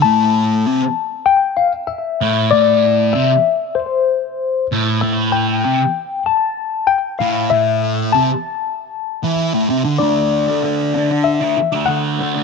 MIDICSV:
0, 0, Header, 1, 4, 480
1, 0, Start_track
1, 0, Key_signature, 0, "minor"
1, 0, Tempo, 623053
1, 32, Time_signature, 4, 2, 24, 8
1, 9581, End_track
2, 0, Start_track
2, 0, Title_t, "Tine electric piano"
2, 0, Program_c, 0, 4
2, 16, Note_on_c, 0, 81, 112
2, 968, Note_on_c, 0, 79, 99
2, 1013, Note_off_c, 0, 81, 0
2, 1202, Note_off_c, 0, 79, 0
2, 1207, Note_on_c, 0, 77, 82
2, 1320, Note_off_c, 0, 77, 0
2, 1442, Note_on_c, 0, 76, 88
2, 1931, Note_on_c, 0, 74, 97
2, 1952, Note_off_c, 0, 76, 0
2, 2411, Note_on_c, 0, 76, 94
2, 2436, Note_off_c, 0, 74, 0
2, 2889, Note_on_c, 0, 72, 71
2, 2916, Note_off_c, 0, 76, 0
2, 3589, Note_off_c, 0, 72, 0
2, 3862, Note_on_c, 0, 76, 95
2, 3972, Note_off_c, 0, 76, 0
2, 4100, Note_on_c, 0, 79, 104
2, 4794, Note_off_c, 0, 79, 0
2, 4824, Note_on_c, 0, 81, 96
2, 5292, Note_on_c, 0, 79, 91
2, 5321, Note_off_c, 0, 81, 0
2, 5524, Note_off_c, 0, 79, 0
2, 5538, Note_on_c, 0, 77, 90
2, 5778, Note_on_c, 0, 76, 91
2, 5791, Note_off_c, 0, 77, 0
2, 6259, Note_on_c, 0, 81, 92
2, 6278, Note_off_c, 0, 76, 0
2, 7193, Note_off_c, 0, 81, 0
2, 7692, Note_on_c, 0, 74, 81
2, 8658, Note_on_c, 0, 76, 94
2, 8690, Note_off_c, 0, 74, 0
2, 9113, Note_off_c, 0, 76, 0
2, 9134, Note_on_c, 0, 78, 89
2, 9581, Note_off_c, 0, 78, 0
2, 9581, End_track
3, 0, Start_track
3, 0, Title_t, "Distorted electric guitar"
3, 0, Program_c, 1, 30
3, 32, Note_on_c, 1, 45, 95
3, 505, Note_off_c, 1, 45, 0
3, 512, Note_on_c, 1, 48, 104
3, 625, Note_off_c, 1, 48, 0
3, 1704, Note_on_c, 1, 45, 86
3, 1936, Note_off_c, 1, 45, 0
3, 1946, Note_on_c, 1, 45, 104
3, 2421, Note_off_c, 1, 45, 0
3, 2427, Note_on_c, 1, 48, 103
3, 2542, Note_off_c, 1, 48, 0
3, 3634, Note_on_c, 1, 45, 95
3, 3865, Note_off_c, 1, 45, 0
3, 3875, Note_on_c, 1, 45, 103
3, 4345, Note_off_c, 1, 45, 0
3, 4353, Note_on_c, 1, 48, 110
3, 4464, Note_off_c, 1, 48, 0
3, 5551, Note_on_c, 1, 45, 97
3, 5783, Note_off_c, 1, 45, 0
3, 5791, Note_on_c, 1, 45, 91
3, 6263, Note_off_c, 1, 45, 0
3, 6273, Note_on_c, 1, 48, 106
3, 6384, Note_off_c, 1, 48, 0
3, 7114, Note_on_c, 1, 52, 100
3, 7344, Note_off_c, 1, 52, 0
3, 7348, Note_on_c, 1, 45, 106
3, 7461, Note_off_c, 1, 45, 0
3, 7469, Note_on_c, 1, 48, 93
3, 7580, Note_off_c, 1, 48, 0
3, 7583, Note_on_c, 1, 50, 88
3, 7692, Note_off_c, 1, 50, 0
3, 7701, Note_on_c, 1, 50, 75
3, 7716, Note_on_c, 1, 57, 73
3, 7724, Note_on_c, 1, 62, 86
3, 8056, Note_off_c, 1, 62, 0
3, 8065, Note_on_c, 1, 62, 76
3, 8083, Note_off_c, 1, 57, 0
3, 8087, Note_on_c, 1, 57, 59
3, 8177, Note_off_c, 1, 50, 0
3, 8186, Note_on_c, 1, 50, 86
3, 8194, Note_off_c, 1, 57, 0
3, 8197, Note_on_c, 1, 57, 93
3, 8198, Note_off_c, 1, 62, 0
3, 8207, Note_on_c, 1, 62, 93
3, 8416, Note_off_c, 1, 50, 0
3, 8426, Note_on_c, 1, 50, 67
3, 8431, Note_off_c, 1, 57, 0
3, 8438, Note_off_c, 1, 62, 0
3, 8441, Note_on_c, 1, 57, 69
3, 8447, Note_on_c, 1, 62, 78
3, 8546, Note_off_c, 1, 62, 0
3, 8552, Note_off_c, 1, 57, 0
3, 8784, Note_on_c, 1, 62, 67
3, 8787, Note_off_c, 1, 50, 0
3, 8807, Note_on_c, 1, 57, 58
3, 8906, Note_off_c, 1, 57, 0
3, 8908, Note_off_c, 1, 62, 0
3, 9028, Note_on_c, 1, 62, 69
3, 9047, Note_on_c, 1, 57, 52
3, 9148, Note_on_c, 1, 50, 89
3, 9150, Note_off_c, 1, 57, 0
3, 9160, Note_off_c, 1, 62, 0
3, 9160, Note_on_c, 1, 57, 91
3, 9169, Note_on_c, 1, 62, 103
3, 9379, Note_off_c, 1, 50, 0
3, 9389, Note_on_c, 1, 50, 62
3, 9394, Note_off_c, 1, 57, 0
3, 9401, Note_off_c, 1, 62, 0
3, 9404, Note_on_c, 1, 57, 73
3, 9411, Note_on_c, 1, 62, 78
3, 9501, Note_off_c, 1, 62, 0
3, 9510, Note_on_c, 1, 62, 60
3, 9521, Note_off_c, 1, 57, 0
3, 9531, Note_on_c, 1, 57, 52
3, 9581, Note_off_c, 1, 50, 0
3, 9581, Note_off_c, 1, 57, 0
3, 9581, Note_off_c, 1, 62, 0
3, 9581, End_track
4, 0, Start_track
4, 0, Title_t, "Muted distorted electric guitar strokes"
4, 8556, Note_on_c, 9, 29, 47
4, 8633, Note_off_c, 9, 29, 0
4, 8912, Note_on_c, 9, 29, 40
4, 8989, Note_off_c, 9, 29, 0
4, 9581, End_track
0, 0, End_of_file